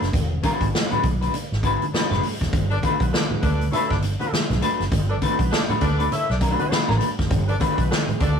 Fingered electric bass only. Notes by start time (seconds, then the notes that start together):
0.02 F#1
0.14 E1
0.61 G#1
0.91 muted fingered electric bass stroke
1.04 B1
1.52 G#1
1.93 muted fingered electric bass stroke
2.11 F#1
2.41 E1
2.53 G1
3.00 B1
3.31 muted fingered electric bass stroke
3.43 D2
3.91 G1
4.32 muted fingered electric bass stroke
4.50 B1
4.80 F#1
4.92 G1
5.39 B1
5.70 muted fingered electric bass stroke
5.82 D2
6.30 B1
6.72 muted fingered electric bass stroke
6.90 A1
7.19 F#1
7.31 G1
7.78 B1
8.09 muted fingered electric bass stroke
8.21 D2